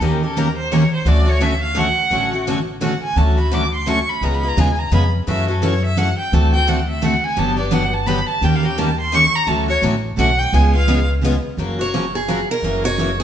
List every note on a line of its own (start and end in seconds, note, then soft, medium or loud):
0.00 0.84 D#2 medium
0.00 0.21 D#3 medium
0.00 0.21 A#3 medium
0.00 0.21 C#4 medium
0.00 0.21 G4 medium
0.00 0.23 G4 medium
0.00 0.21 A#4 medium
0.23 0.36 C#4 soft
0.23 0.36 G4 medium
0.23 0.40 A4 medium
0.23 0.36 A#4 soft
0.37 0.47 D#3 medium
0.37 0.47 A#3 medium
0.37 0.47 C#4 medium
0.37 0.47 G4 medium
0.37 0.47 A#4 loud
0.37 0.56 A#4 medium
0.57 0.74 C5 medium
0.72 0.82 D#3 medium
0.72 0.82 A#3 medium
0.72 0.82 C#4 medium
0.72 0.83 G4 medium
0.72 0.82 A#4 loud
0.72 0.92 C#5 medium
0.93 1.10 C5 medium
1.05 1.90 D2 medium
1.05 1.25 D3 medium
1.05 1.26 F#3 medium
1.05 1.26 A3 medium
1.05 1.26 C#4 medium
1.05 1.25 F#4 medium
1.05 1.27 A4 medium
1.05 1.31 D5 medium
1.26 1.40 A3 soft
1.26 1.40 C#4 medium
1.26 1.40 F#4 medium
1.26 1.44 C#5 medium
1.41 1.51 D3 medium
1.41 1.51 F#3 medium
1.41 1.52 A3 loud
1.41 1.52 C#4 medium
1.41 1.52 F#4 medium
1.41 1.52 A4 medium
1.41 1.62 E5 medium
1.63 1.80 F5 medium
1.75 1.86 D3 medium
1.75 1.86 F#3 medium
1.75 1.86 A3 medium
1.75 1.87 C#4 medium
1.75 1.87 F#4 medium
1.75 1.87 A4 medium
1.79 2.48 F#5 loud
2.10 2.95 A1 medium
2.10 2.31 D3 medium
2.10 2.31 F#3 medium
2.10 2.31 A3 medium
2.10 2.32 C#4 medium
2.10 2.32 F#4 medium
2.10 2.32 A4 medium
2.33 2.46 A3 soft
2.33 2.46 C#4 medium
2.33 2.46 F#4 medium
2.47 2.57 D3 medium
2.47 2.58 F#3 medium
2.47 2.58 A3 loud
2.47 2.58 C#4 medium
2.47 2.58 F#4 loud
2.47 2.58 A4 medium
2.81 2.92 D3 medium
2.81 2.92 F#3 medium
2.81 2.92 A3 medium
2.81 2.92 C#4 medium
2.81 2.92 F#4 loud
2.81 2.92 A4 medium
2.81 3.02 F#5 medium
3.03 3.19 G#5 medium
3.16 4.00 D2 medium
3.16 3.36 D3 medium
3.16 3.37 F#3 medium
3.16 3.37 A3 medium
3.16 3.37 C#4 medium
3.16 3.36 F#4 medium
3.16 3.37 A4 medium
3.16 3.38 A5 medium
3.37 3.51 A3 soft
3.37 3.51 C#4 medium
3.37 3.51 F#4 medium
3.37 3.55 B5 medium
3.51 3.62 D3 medium
3.51 3.62 F#3 medium
3.51 3.63 A3 medium
3.51 3.63 C#4 medium
3.51 3.63 F#4 medium
3.51 3.63 A4 medium
3.51 3.74 D6 loud
3.74 3.90 C6 medium
3.86 3.97 D3 medium
3.86 3.98 F#3 medium
3.86 3.98 A3 medium
3.86 3.98 C#4 medium
3.86 3.98 F#4 medium
3.86 3.98 A4 loud
3.86 4.11 C#6 medium
4.09 4.26 B5 medium
4.21 4.50 C#2 medium
4.21 4.42 C#3 medium
4.21 4.42 G#3 medium
4.21 4.43 B3 medium
4.21 4.43 F4 medium
4.21 4.42 G#4 medium
4.21 4.36 A#5 medium
4.35 4.50 B5 medium
4.43 4.57 B3 soft
4.43 4.57 F4 medium
4.43 4.57 G#4 medium
4.48 4.61 A#5 medium
4.57 4.87 D#2 medium
4.57 4.68 C#3 medium
4.57 4.68 G#3 medium
4.57 4.68 B3 medium
4.57 4.68 F4 loud
4.57 4.68 G#4 loud
4.57 4.80 G#5 medium
4.79 4.92 A#5 medium
4.91 5.21 F2 medium
4.91 5.03 C#3 medium
4.91 5.03 G#3 medium
4.91 5.03 B3 medium
4.91 5.03 F4 medium
4.91 5.03 G#4 medium
4.91 5.06 B5 loud
5.27 6.11 F#2 medium
5.27 5.47 C#3 medium
5.27 5.47 E3 medium
5.27 5.48 F#3 medium
5.27 5.48 A3 medium
5.27 5.48 C#4 medium
5.27 5.48 E4 medium
5.27 5.47 F#4 medium
5.27 5.48 A4 medium
5.27 5.47 E5 medium
5.48 5.61 A3 soft
5.48 5.62 C#4 medium
5.48 5.62 F#4 medium
5.48 5.66 A4 soft
5.62 5.73 C#3 medium
5.62 5.73 E3 loud
5.62 5.73 F#3 medium
5.62 5.73 A3 medium
5.62 5.73 C#4 medium
5.62 5.73 E4 medium
5.62 5.73 F#4 loud
5.62 5.73 A4 loud
5.62 5.84 C#5 medium
5.85 5.99 E5 medium
5.96 6.08 C#3 medium
5.96 6.08 E3 medium
5.96 6.08 F#3 medium
5.96 6.08 A3 medium
5.96 6.08 C#4 medium
5.96 6.08 E4 medium
5.96 6.09 F#4 medium
5.96 6.08 A4 medium
5.96 6.18 F#5 loud
6.19 6.36 G5 medium
6.32 7.16 D2 medium
6.32 6.53 D3 medium
6.32 6.53 A3 medium
6.32 6.53 C4 medium
6.32 6.53 F#4 medium
6.32 6.52 A4 medium
6.32 6.54 A5 medium
6.54 6.67 C4 soft
6.54 6.67 F#4 medium
6.54 6.67 A4 medium
6.54 6.70 G5 medium
6.67 6.78 D3 medium
6.67 6.78 A3 medium
6.67 6.78 C4 medium
6.67 6.78 F#4 medium
6.67 6.79 A4 medium
6.67 6.89 F#5 medium
6.90 7.06 E5 medium
7.02 7.13 D3 medium
7.02 7.13 A3 medium
7.02 7.13 C4 medium
7.02 7.13 F#4 medium
7.02 7.13 A4 medium
7.02 7.25 F#5 medium
7.24 7.40 G#5 medium
7.36 8.21 G1 medium
7.36 7.57 D3 medium
7.36 7.57 F#3 medium
7.36 7.57 B3 medium
7.36 7.57 D4 medium
7.36 7.56 G4 medium
7.36 7.58 A5 medium
7.57 7.70 B3 soft
7.57 7.71 D4 medium
7.57 7.71 G4 medium
7.57 7.75 D5 medium
7.71 7.82 D3 medium
7.71 7.83 F#3 medium
7.71 7.83 B3 medium
7.71 7.83 D4 loud
7.71 7.83 G4 medium
7.71 7.95 F#5 medium
7.94 8.08 A5 medium
8.06 8.18 D3 medium
8.06 8.18 F#3 medium
8.06 8.18 B3 loud
8.06 8.19 D4 medium
8.06 8.18 G4 medium
8.06 8.28 B5 loud
8.28 8.46 A5 loud
8.41 9.26 D#2 medium
8.41 8.62 D#3 medium
8.41 8.63 A#3 medium
8.41 8.63 C#4 medium
8.41 8.63 G4 medium
8.41 8.62 A#4 medium
8.41 8.57 G5 medium
8.56 8.67 F5 medium
8.63 8.77 C#4 medium
8.63 8.77 G4 medium
8.63 8.77 A#4 medium
8.63 8.80 G5 medium
8.78 8.88 D#3 medium
8.78 8.88 A#3 medium
8.78 8.89 C#4 medium
8.78 8.89 G4 loud
8.78 8.89 A#4 loud
8.78 8.99 A5 medium
9.00 9.16 C6 loud
9.12 9.23 D#3 medium
9.12 9.23 A#3 medium
9.12 9.24 C#4 medium
9.12 9.24 G4 loud
9.12 9.24 A#4 loud
9.12 9.37 C#6 loud
9.36 9.49 A#5 loud
9.47 9.75 D2 medium
9.47 9.67 D3 medium
9.47 9.67 F#3 medium
9.47 9.67 A3 medium
9.47 9.67 C#4 medium
9.47 9.67 F#4 medium
9.47 9.68 A4 medium
9.47 9.69 A5 medium
9.68 9.82 A3 soft
9.68 9.83 C#4 medium
9.68 9.82 F#4 medium
9.68 9.78 C#5 loud
9.82 10.12 A1 medium
9.82 9.93 D3 medium
9.82 9.94 F#3 loud
9.82 9.94 A3 loud
9.82 9.94 C#4 loud
9.82 9.94 F#4 loud
9.82 9.93 A4 loud
10.17 10.47 B1 medium
10.17 10.29 D3 medium
10.17 10.29 F#3 loud
10.17 10.29 A3 loud
10.17 10.29 C#4 medium
10.17 10.29 F#4 loud
10.17 10.28 A4 loud
10.17 10.40 F#5 loud
10.39 10.55 G5 loud
10.53 11.37 C#2 medium
10.53 10.73 C#3 medium
10.53 10.73 G#3 medium
10.53 10.73 B3 medium
10.53 10.73 F4 medium
10.53 10.72 G#4 medium
10.53 10.74 G#5 loud
10.73 10.87 B3 soft
10.73 10.88 F4 medium
10.73 10.87 G#4 medium
10.73 11.07 F5 medium
10.88 10.99 C#3 loud
10.88 10.98 G#3 loud
10.88 10.99 B3 loud
10.88 10.99 F4 loud
10.88 10.99 G#4 loud
11.24 11.34 C#3 medium
11.24 11.34 G#3 medium
11.24 11.35 B3 medium
11.24 11.34 F4 loud
11.24 11.35 G#4 loud
11.57 12.42 F#1 medium
11.57 11.78 C#3 medium
11.57 11.78 F3 medium
11.57 11.78 F#3 medium
11.57 11.78 A#3 medium
11.57 11.79 C#4 medium
11.57 11.78 F4 medium
11.57 11.78 F#4 medium
11.57 11.78 A#4 medium
11.79 11.93 A#3 soft
11.79 11.93 C#4 medium
11.79 11.92 F#4 medium
11.79 12.12 C#5 medium
11.94 12.04 C#3 medium
11.94 12.04 F3 medium
11.94 12.04 F#3 medium
11.94 12.04 A#3 medium
11.94 12.04 C#4 medium
11.94 12.04 F4 medium
11.94 12.04 F#4 medium
11.94 12.04 A#4 medium
12.15 12.47 G#4 medium
12.28 12.39 C#3 medium
12.28 12.39 F3 medium
12.28 12.39 F#3 medium
12.28 12.39 A#3 medium
12.28 12.39 C#4 medium
12.28 12.39 F4 medium
12.28 12.40 F#4 medium
12.28 12.39 A#4 medium
12.51 12.83 A#4 medium
12.62 13.23 F#1 medium
12.62 12.83 C#3 medium
12.62 12.84 E3 medium
12.62 12.83 F#3 medium
12.62 12.84 A#3 medium
12.62 12.84 C#4 medium
12.62 12.84 E4 medium
12.62 12.83 F#4 medium
12.62 12.83 A#4 medium
12.84 12.99 A#3 soft
12.84 12.98 C#4 medium
12.84 12.97 F#4 medium
12.84 13.17 C#5 medium
12.98 13.09 C#3 medium
12.98 13.09 E3 medium
12.98 13.08 F#3 medium
12.98 13.10 A#3 medium
12.98 13.10 C#4 medium
12.98 13.09 E4 medium
12.98 13.10 F#4 medium
12.98 13.09 A#4 loud
13.20 13.23 G#4 medium